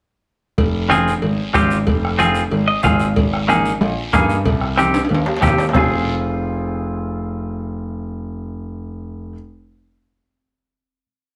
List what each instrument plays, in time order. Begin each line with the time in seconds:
0.58 grand piano F1, bombo low, cowbell, long guiro
0.90 clean electric guitar C4 F4 G#4, bombo rim, high conga, short guiro
1.08 short guiro
1.22 grand piano G#1, cowbell, long guiro
1.54 grand piano G#1, clean electric guitar C4 F4 G4, bombo low, bombo rim, high conga, short guiro
1.71 short guiro
1.87 grand piano F1, bombo low, cowbell, long guiro
2.05 bombo rim
2.19 clean electric guitar C4 F4 G#4, bombo rim, high conga, short guiro
2.35 short guiro
2.51 grand piano G#1, cowbell, long guiro
2.68 clean electric guitar D#5
2.83 grand piano G#1, clean electric guitar C4 F4 G#4 F5, bombo low, bombo rim, high conga, low conga, short guiro
3.00 short guiro
3.16 grand piano G#1, bombo low, cowbell, long guiro
3.34 bombo rim
3.48 clean electric guitar A#3 D#4 G#4, bombo rim, high conga, short guiro
3.65 short guiro
3.81 grand piano A#1, cowbell, long guiro
4.13 grand piano G2, clean electric guitar A#3 D#4 G#4, bombo low, bombo rim, high conga, short guiro
4.30 short guiro
4.45 grand piano C2, bombo low, cowbell, long guiro
4.61 bombo rim
4.78 clean electric guitar C4 D#4 G4, bombo rim, high conga, short guiro
4.94 high timbale, short guiro
5.05 high timbale
5.09 grand piano D#2, cowbell, long guiro
5.14 high timbale
5.26 low timbale
5.37 low timbale
5.42 grand piano D#2, clean electric guitar C4 D#4 G4, bombo low, bombo rim, high conga, low conga, short guiro
5.47 low timbale
5.58 low timbale, short guiro
5.69 low timbale
5.73 grand piano F1, clean electric guitar C4 F4, bombo low, low conga, low timbale, long guiro
5.77 clean electric guitar G#4